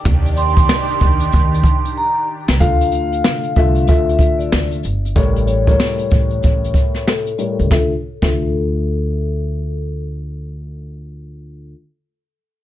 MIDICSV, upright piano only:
0, 0, Header, 1, 2, 480
1, 0, Start_track
1, 0, Key_signature, -1, "minor"
1, 0, Tempo, 638298
1, 38, Time_signature, 4, 2, 24, 8
1, 9502, End_track
2, 0, Start_track
2, 0, Title_t, "Upright piano"
2, 0, Program_c, 0, 0
2, 1953, Note_on_c, 0, 50, 92
2, 1954, Note_on_c, 0, 57, 86
2, 1956, Note_on_c, 0, 65, 85
2, 1957, Note_on_c, 0, 77, 109
2, 2630, Note_off_c, 0, 50, 0
2, 2631, Note_off_c, 0, 57, 0
2, 2632, Note_off_c, 0, 65, 0
2, 2632, Note_off_c, 0, 77, 0
2, 2680, Note_on_c, 0, 50, 93
2, 2681, Note_on_c, 0, 57, 91
2, 2682, Note_on_c, 0, 65, 89
2, 2683, Note_on_c, 0, 76, 102
2, 2904, Note_off_c, 0, 50, 0
2, 2904, Note_off_c, 0, 57, 0
2, 2905, Note_off_c, 0, 65, 0
2, 2906, Note_off_c, 0, 76, 0
2, 2916, Note_on_c, 0, 50, 87
2, 2917, Note_on_c, 0, 57, 89
2, 2919, Note_on_c, 0, 65, 87
2, 2921, Note_on_c, 0, 76, 103
2, 3592, Note_off_c, 0, 50, 0
2, 3592, Note_off_c, 0, 57, 0
2, 3593, Note_off_c, 0, 65, 0
2, 3594, Note_off_c, 0, 76, 0
2, 3876, Note_on_c, 0, 45, 91
2, 3878, Note_on_c, 0, 55, 89
2, 3879, Note_on_c, 0, 70, 82
2, 3880, Note_on_c, 0, 73, 103
2, 4228, Note_off_c, 0, 45, 0
2, 4228, Note_off_c, 0, 55, 0
2, 4229, Note_off_c, 0, 70, 0
2, 4230, Note_off_c, 0, 73, 0
2, 4261, Note_on_c, 0, 45, 93
2, 4263, Note_on_c, 0, 55, 86
2, 4264, Note_on_c, 0, 70, 86
2, 4265, Note_on_c, 0, 73, 108
2, 5474, Note_off_c, 0, 45, 0
2, 5474, Note_off_c, 0, 55, 0
2, 5475, Note_off_c, 0, 70, 0
2, 5476, Note_off_c, 0, 73, 0
2, 5550, Note_on_c, 0, 45, 77
2, 5551, Note_on_c, 0, 55, 67
2, 5552, Note_on_c, 0, 70, 70
2, 5554, Note_on_c, 0, 73, 84
2, 5779, Note_off_c, 0, 45, 0
2, 5779, Note_off_c, 0, 55, 0
2, 5780, Note_off_c, 0, 70, 0
2, 5781, Note_off_c, 0, 73, 0
2, 5792, Note_on_c, 0, 50, 86
2, 5795, Note_on_c, 0, 57, 80
2, 5797, Note_on_c, 0, 65, 78
2, 5799, Note_on_c, 0, 76, 93
2, 5948, Note_off_c, 0, 50, 0
2, 5949, Note_off_c, 0, 57, 0
2, 5951, Note_off_c, 0, 65, 0
2, 5952, Note_off_c, 0, 76, 0
2, 6178, Note_on_c, 0, 50, 84
2, 6181, Note_on_c, 0, 57, 74
2, 6184, Note_on_c, 0, 65, 78
2, 6186, Note_on_c, 0, 76, 89
2, 8813, Note_off_c, 0, 50, 0
2, 8814, Note_off_c, 0, 57, 0
2, 8816, Note_off_c, 0, 65, 0
2, 8817, Note_off_c, 0, 76, 0
2, 9502, End_track
0, 0, End_of_file